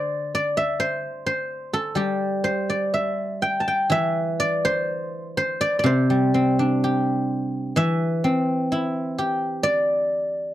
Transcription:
Already playing: D3 C5 D5 E5
0.35 D5
0.57 E5
0.80 C5
1.26 C5
1.73 A4
1.95 G3 G4
2.44 C5
2.70 D5
2.94 E5
3.42 G5
3.60 A5
3.68 G5
3.90 E3 E5
4.40 D5
4.65 C5
5.37 C5
5.61 D5
5.79 D5
5.84 C3 C5
6.10 G3
6.34 C4
6.59 D4
6.84 G4
7.76 E3 E5
8.24 C4
8.72 E4
9.18 G4
9.63 D5

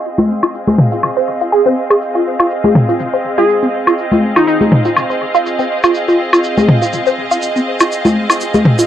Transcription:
Already playing: C4 G#4 D#5 F5
0.05 shaker
0.18 F4, high conga, shaker
0.43 F4, high woodblock, shaker
0.54 shaker
0.66 G#4, high conga, shaker
0.78 mid tom
0.92 F4, shaker
1.03 high woodblock, shaker
1.17 C5, shaker
1.41 F4, shaker
1.52 G#4, shaker
1.66 C4, shaker
1.90 G#4, high woodblock, shaker
2.02 shaker
2.15 F4, shaker
2.40 F4, high woodblock, shaker
2.50 shaker
2.64 G#4, high conga, shaker
2.75 mid tom
2.89 F4, shaker
3.00 shaker
3.14 C5, shaker
3.38 F4 G#4, shaker
3.49 shaker
3.63 C4, shaker
3.87 F4, high woodblock, shaker
3.98 shaker
4.12 F4, high conga, shaker
4.36 D#4 F4, high woodblock, shaker
4.47 D#4, shaker
4.61 G#4, high conga, shaker
4.72 mid tom
4.85 F4, shaker
4.96 high woodblock, shaker
5.10 C5, shaker
5.35 F4, shaker
5.46 shaker
5.59 C4, shaker
5.83 F4, high woodblock, shaker
5.95 shaker
6.08 F4, shaker
6.33 F4, high woodblock, shaker
6.44 shaker
6.58 G#4, high conga, shaker
6.69 mid tom
6.82 F4, shaker
6.93 shaker
7.06 C5, shaker
7.31 F4, shaker
7.42 shaker
7.56 C4, shaker
7.80 F4, high woodblock, shaker
7.92 shaker
8.05 F4, high conga, shaker
8.30 F4, high woodblock, shaker
8.41 shaker
8.54 G#4, high conga, shaker
8.65 mid tom
8.79 F4, shaker

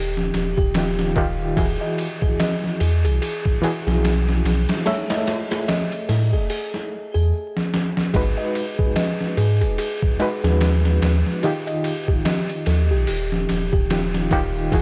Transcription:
Already playing: D#1 D#3 D#4 F4 G4
0.17 snare, tambourine
0.33 D#1, snare, ride
0.57 D#1 G4, kick, tambourine
0.74 D#3 D#4 F4 G4, snare, ride, tambourine
0.99 snare, tambourine
1.16 D#1 D#3 D#4 F4 G4, kick, ride
1.40 tambourine
1.57 E1 E3 E4 F#4 G#4, kick, ride, tambourine
1.81 D#5, tambourine
1.98 ride
2.22 G#4, kick, tambourine
2.40 D#5, snare, ride, tambourine
2.63 snare, tambourine
2.80 E2 G#4, ride
3.04 B1 G#4, ride, tambourine
3.21 G#4, ride, tambourine
3.46 kick, tambourine
3.62 E3 E4 F#4 G#4, ride
3.86 B1 G#4, snare, tambourine
4.03 snare, ride, tambourine
4.27 snare, tambourine
4.44 B1, snare, ride
4.68 snare, ride, tambourine
4.86 A3 G#4 A4 C#5 E5, snare, ride, tambourine
5.10 D#5, snare, ride, tambourine
5.27 snare, ride
5.50 G#4, snare, ride, tambourine
5.68 D#5, snare, ride, tambourine
5.91 ride, tambourine
6.09 A2 A4, snare, ride
6.33 E1 G#4, tambourine
6.50 G#4, open hi-hat, tambourine
6.73 snare, tambourine
7.14 E2 G#4, tambourine
7.57 snare
7.74 snare
7.97 snare
8.14 G#1 G#3 D#4 F#4 G#4 B4, kick, ride, tambourine
8.37 D#5, tambourine
8.55 ride
8.79 G#4, kick, tambourine
8.96 D#5, snare, ride, tambourine
9.19 snare, tambourine
9.37 G#2 G#4, ride
9.60 D#1 G#4, ride, tambourine
9.78 G#4, ride, tambourine
10.02 kick, tambourine
10.19 G#3 D#4 F#4 B4, ride
10.42 D#2 G#4, snare, tambourine
10.61 snare, ride, tambourine
10.85 snare, tambourine
11.02 D#2, snare, ride
11.26 snare, tambourine
11.43 D#3 D#4 F4 G4, ride, tambourine
11.67 D#5, ride, tambourine
11.84 ride
12.07 G4, kick, tambourine
12.25 D#5, snare, ride, tambourine
12.49 ride, tambourine
12.66 D#2 A4, snare, ride
12.90 A#1 G4, tambourine
13.07 D#1 G4, open hi-hat, tambourine
13.32 snare, tambourine
13.49 D#1, snare, ride
13.73 D#1 G4, kick, tambourine
13.90 D#3 D#4 F4 G4, snare, ride, tambourine
14.13 snare, tambourine
14.31 D#1 D#3 D#4 F4 G4, kick, ride
14.55 tambourine
14.71 E1 E3 E4 F#4 G#4, kick, ride, tambourine

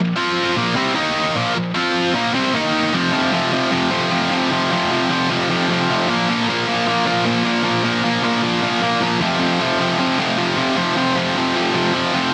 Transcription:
Already playing: A#2 F3
0.16 F3 C4 F4
0.56 A#2 F3 A#3
0.75 C3 G3 C4
0.95 D#3 A#3 D#4
1.35 A#2 F3 A#3
1.54 A#2 F3
1.74 F3 C4 F4
2.14 A#2 F3 A#3
2.33 C3 G3 C4
2.54 D#3 A#3 D#4
2.93 F2 C3 F3
3.12 F2 C3 F3
3.32 F2 C3 F3
3.52 F2 C3 F3
3.71 F2 C3 F3
3.90 F2 C3 F3
4.11 F2 C3 F3
4.30 F2 C3 F3
4.51 F2 C3 F3
4.71 F2 C3 F3
4.91 F2 C3 F3
5.10 F2 C3 F3
5.30 F2 C3 F3
5.50 F2 C3 F3
5.69 F2 C3 F3
5.89 F2 C3 F3
6.08 A#2 F3 A#3
6.28 A#2 F3 A#3
6.47 A#2 F3 A#3
6.67 A#2 F3 A#3
6.86 A#2 F3 A#3
7.05 A#2 F3 A#3
7.25 A#2 F3 A#3
7.44 A#2 F3 A#3
7.64 A#2 F3 A#3
7.83 A#2 F3 A#3
8.03 A#2 F3 A#3
8.22 A#2 F3 A#3
8.42 A#2 F3 A#3
8.62 A#2 F3 A#3
8.82 A#2 F3 A#3
9.01 A#2 F3 A#3
9.21 F2 C3 F3
9.40 F2 C3 F3
9.60 F2 C3 F3
9.80 F2 C3 F3
9.98 F2 C3 F3
10.18 F2 C3 F3
10.37 F2 C3 F3
10.56 F2 C3 F3
10.76 F2 C3 F3
10.96 F2 C3 F3
11.15 F2 C3 F3
11.36 F2 C3 F3
11.55 F2 C3 F3
11.74 F2 C3 F3
11.93 F2 C3 F3
12.13 F2 C3 F3

